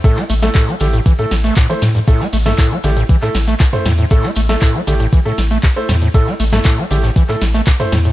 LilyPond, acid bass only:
\new Staff \with { instrumentName = "Acid bass" } { \clef bass \time 4/4 \key a \minor \tempo 4 = 118 a,16 a16 a16 a16 a,16 g16 d16 a,16 e16 a,16 r16 a16 a,16 e16 a,16 g,16 | a,16 a16 a16 a16 a,16 g16 d16 a,16 e16 a,16 r16 a16 a,16 r16 a,16 a,16 | a,16 a16 a16 a16 a,16 g16 d16 a,16 e16 a,16 r16 a16 a,16 r16 a,16 a,16 | a,16 a16 a16 a16 a,16 g16 d16 a,16 e16 a,16 r16 a16 a,16 r16 a,16 a,16 | }